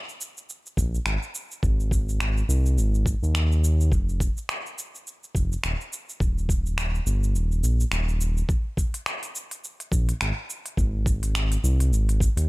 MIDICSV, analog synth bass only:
0, 0, Header, 1, 2, 480
1, 0, Start_track
1, 0, Tempo, 571429
1, 1372, Time_signature, 4, 2, 24, 8
1, 10491, End_track
2, 0, Start_track
2, 0, Title_t, "Analog synth bass"
2, 0, Program_c, 0, 38
2, 649, Note_on_c, 0, 34, 90
2, 830, Note_off_c, 0, 34, 0
2, 887, Note_on_c, 0, 32, 85
2, 987, Note_off_c, 0, 32, 0
2, 1369, Note_on_c, 0, 32, 90
2, 2042, Note_off_c, 0, 32, 0
2, 2087, Note_on_c, 0, 36, 94
2, 2330, Note_on_c, 0, 32, 99
2, 2342, Note_off_c, 0, 36, 0
2, 2643, Note_off_c, 0, 32, 0
2, 2708, Note_on_c, 0, 39, 93
2, 3289, Note_on_c, 0, 29, 87
2, 3301, Note_off_c, 0, 39, 0
2, 3603, Note_off_c, 0, 29, 0
2, 4489, Note_on_c, 0, 29, 94
2, 4670, Note_off_c, 0, 29, 0
2, 4733, Note_on_c, 0, 27, 88
2, 4830, Note_off_c, 0, 27, 0
2, 5209, Note_on_c, 0, 27, 84
2, 5882, Note_off_c, 0, 27, 0
2, 5930, Note_on_c, 0, 31, 95
2, 6172, Note_on_c, 0, 27, 94
2, 6185, Note_off_c, 0, 31, 0
2, 6408, Note_off_c, 0, 27, 0
2, 6413, Note_on_c, 0, 34, 76
2, 6592, Note_off_c, 0, 34, 0
2, 6647, Note_on_c, 0, 27, 106
2, 7081, Note_off_c, 0, 27, 0
2, 8328, Note_on_c, 0, 34, 94
2, 8510, Note_off_c, 0, 34, 0
2, 8575, Note_on_c, 0, 32, 87
2, 8671, Note_off_c, 0, 32, 0
2, 9050, Note_on_c, 0, 32, 92
2, 9723, Note_off_c, 0, 32, 0
2, 9773, Note_on_c, 0, 36, 96
2, 10005, Note_on_c, 0, 32, 99
2, 10018, Note_off_c, 0, 36, 0
2, 10321, Note_off_c, 0, 32, 0
2, 10385, Note_on_c, 0, 39, 93
2, 10491, Note_off_c, 0, 39, 0
2, 10491, End_track
0, 0, End_of_file